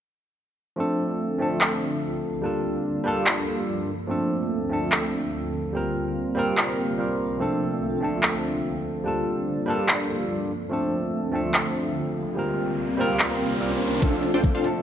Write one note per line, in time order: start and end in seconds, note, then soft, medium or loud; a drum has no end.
0.76 2.42 D2 medium
0.76 2.42 D3 medium
0.76 1.37 F3 medium
0.76 1.37 A3 medium
0.76 2.42 C4 medium
0.76 1.38 C4 medium
0.76 1.38 D4 medium
0.76 2.42 F4 medium
0.80 1.39 A4 loud
1.38 2.40 F3 medium
1.38 2.41 A3 medium
1.38 2.41 C4 medium
1.38 2.42 D4 medium
1.42 2.42 A4 medium
1.61 clap medium
2.42 3.87 G2 medium
2.42 3.87 F3 medium
2.42 3.02 G3 medium
2.42 3.03 A#3 medium
2.42 3.87 A#3 medium
2.42 3.03 D4 medium
2.42 3.04 F4 medium
2.42 3.87 A4 medium
2.46 3.04 A4 medium
3.04 3.86 G3 medium
3.04 3.87 A#3 medium
3.04 3.87 D4 medium
3.04 3.88 F4 medium
3.08 3.88 A4 loud
3.26 clap medium
3.89 5.73 D2 medium
3.89 5.73 D3 medium
3.89 5.73 C4 medium
3.89 9.02 F4 medium
4.07 4.68 F3 medium
4.07 4.68 A3 medium
4.07 4.69 C4 medium
4.07 4.69 D4 medium
4.11 4.70 A4 loud
4.69 5.71 F3 medium
4.69 5.72 A3 medium
4.69 5.72 C4 medium
4.69 5.73 D4 medium
4.73 5.73 A4 medium
4.92 clap medium
5.73 7.39 C2 medium
5.73 7.39 C3 medium
5.73 6.33 G3 medium
5.73 6.34 A#3 medium
5.73 7.39 A#3 medium
5.73 6.34 C4 medium
5.73 6.35 F4 medium
5.73 6.35 A#4 medium
6.35 6.96 G3 medium
6.35 6.96 A#3 medium
6.35 6.97 C4 medium
6.35 6.97 F4 medium
6.35 6.98 A#4 loud
6.57 clap medium
6.98 7.37 G3 medium
6.98 7.38 A#3 medium
6.98 7.38 C4 medium
6.98 7.38 F4 medium
6.98 7.38 A#4 medium
7.38 9.04 D2 medium
7.38 9.04 D3 medium
7.38 7.99 F3 medium
7.38 7.99 A3 medium
7.38 8.00 C4 medium
7.38 9.04 C4 medium
7.38 8.00 D4 medium
7.38 8.01 A4 loud
8.00 9.02 F3 medium
8.00 9.03 A3 medium
8.00 9.03 C4 medium
8.00 9.04 D4 medium
8.04 9.04 A4 medium
8.23 clap medium
9.04 10.49 G2 medium
9.04 10.49 F3 medium
9.04 9.65 G3 medium
9.04 9.65 A#3 medium
9.04 10.49 A#3 medium
9.04 9.66 D4 medium
9.04 9.66 F4 medium
9.04 10.49 A4 medium
9.08 9.67 A4 medium
9.66 10.48 G3 medium
9.66 10.49 A#3 medium
9.66 10.49 D4 medium
9.66 10.50 F4 medium
9.70 10.50 A4 medium
9.88 clap medium
10.51 12.35 D2 medium
10.51 12.35 D3 medium
10.51 12.35 C4 medium
10.51 13.99 F4 medium
10.69 11.30 F3 medium
10.69 11.31 A3 medium
10.69 11.31 C4 medium
10.69 11.32 D4 medium
10.69 riser medium
10.73 11.32 A4 loud
11.31 12.34 F3 medium
11.31 12.34 A3 medium
11.31 12.35 C4 medium
11.31 12.35 D4 medium
11.35 12.36 A4 medium
11.54 clap medium
12.35 14.01 C2 medium
12.35 14.01 C3 medium
12.35 12.96 G3 medium
12.35 12.96 A#3 medium
12.35 14.01 A#3 medium
12.35 12.97 C4 medium
12.35 12.97 F4 medium
12.35 12.98 A#4 medium
12.97 13.58 G3 medium
12.97 13.58 A#3 medium
12.97 13.59 C4 medium
12.97 13.59 F4 medium
12.97 13.60 A#4 loud
13.20 clap medium
13.60 13.99 G3 medium
13.60 14.00 A#3 medium
13.60 14.00 C4 medium
13.60 14.00 F4 medium
13.60 14.00 A#4 medium
14.00 14.82 D2 medium
14.00 14.82 D3 medium
14.00 14.61 F3 medium
14.00 14.62 A3 medium
14.00 14.62 C4 medium
14.00 14.82 C4 medium
14.00 14.31 D4 medium
14.00 14.63 D4 medium
14.00 14.31 F4 medium
14.00 14.82 F4 medium
14.00 14.31 A4 medium
14.00 14.63 A4 loud
14.00 14.31 C5 medium
14.00 14.31 F5 medium
14.00 kick medium
14.00 closed hi-hat medium
14.23 closed hi-hat medium
14.34 14.52 D4 medium
14.34 14.52 F4 medium
14.34 14.52 A4 medium
14.34 14.52 C5 medium
14.34 14.52 G5 loud
14.44 kick loud
14.44 closed hi-hat medium
14.55 14.68 D4 medium
14.55 14.68 F4 medium
14.55 14.68 A4 medium
14.55 14.68 C5 medium
14.55 14.68 F5 loud
14.62 14.82 F3 medium
14.62 14.82 A3 medium
14.62 14.82 C4 medium
14.62 14.82 D4 medium
14.62 14.82 A4 medium
14.62 closed hi-hat medium